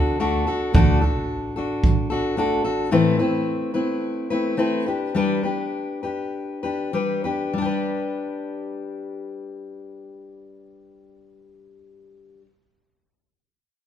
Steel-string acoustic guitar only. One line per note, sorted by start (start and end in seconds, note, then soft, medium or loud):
0.00 0.19 D4 soft
0.00 0.19 F#4 soft
0.00 0.20 A4 medium
0.20 0.47 A3 medium
0.20 0.47 D4 medium
0.20 0.47 F#4 medium
0.20 0.46 A4 medium
0.47 0.74 D4 soft
0.47 0.74 F#4 medium
0.47 0.74 A4 soft
0.74 1.01 D3 medium
0.74 1.02 A3 medium
0.74 1.02 D4 medium
0.74 1.01 F#4 medium
0.74 1.00 A4 medium
1.01 1.57 D4 soft
1.01 1.56 F#4 soft
1.01 1.56 A4 soft
1.56 2.11 D4 soft
1.56 2.10 F#4 soft
1.56 2.10 A4 soft
2.10 2.37 D4 soft
2.10 2.37 F#4 medium
2.10 2.38 A4 medium
2.37 2.65 A3 medium
2.37 2.65 D4 medium
2.37 2.64 F#4 medium
2.37 2.63 A4 medium
2.64 2.92 D4 soft
2.64 2.92 F#4 medium
2.64 2.92 A4 medium
2.91 3.19 A2 medium
2.91 3.19 E3 medium
2.91 3.20 A3 medium
2.91 3.19 C4 medium
2.91 3.18 E4 medium
2.91 3.18 B4 medium
3.19 3.75 A3 soft
3.19 3.74 C4 soft
3.19 3.73 E4 medium
3.19 3.73 B4 soft
3.74 4.31 A3 soft
3.74 4.30 C4 soft
3.74 4.30 E4 soft
3.74 4.30 B4 soft
4.30 4.56 A3 soft
4.30 4.57 C4 soft
4.30 4.57 E4 soft
4.30 4.58 B4 medium
4.57 4.86 A3 soft
4.57 4.86 C4 medium
4.57 4.86 E4 medium
4.57 4.85 B4 medium
4.86 5.15 D4 soft
4.86 5.15 G4 soft
4.86 5.15 B4 soft
5.15 5.43 G3 medium
5.15 5.44 D4 medium
5.15 5.44 G4 medium
5.15 5.42 B4 medium
5.43 6.04 D4 soft
5.43 6.03 G4 soft
5.43 6.02 B4 soft
6.03 6.65 D4 soft
6.03 6.64 G4 soft
6.03 6.63 B4 soft
6.63 6.92 D4 soft
6.63 6.93 G4 soft
6.63 6.93 B4 soft
6.93 7.24 G3 medium
6.93 7.25 D4 medium
6.93 7.24 G4 soft
6.93 7.23 B4 medium
7.24 7.57 D4 soft
7.24 7.56 G4 soft
7.24 7.56 B4 soft
7.53 12.41 G3 medium
7.58 12.46 D4 medium
7.58 12.50 G4 medium
7.65 12.53 B4 medium